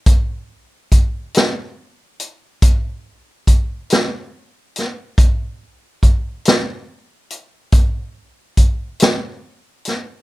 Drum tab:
HH |x-xx-xx-xx-x|x-xx-xx-xx-x|
SD |---o-----o-o|---o-----o-o|
BD |o-o---o-o---|o-o---o-o---|